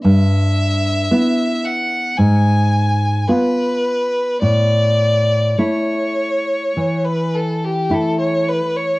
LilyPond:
<<
  \new Staff \with { instrumentName = "Violin" } { \time 4/4 \key a \mixolydian \tempo 4 = 53 e''4. fis''8 gis''4 b'4 | d''4 cis''4~ cis''16 b'16 a'16 g'16 a'16 cis''16 b'16 cis''16 | }
  \new Staff \with { instrumentName = "Nylon-string guitar" } { \time 4/4 \key a \mixolydian g,4 <b e'>4 gis,4 <b eis'>4 | a,4 <a e'>4 e4 <a e'>4 | }
>>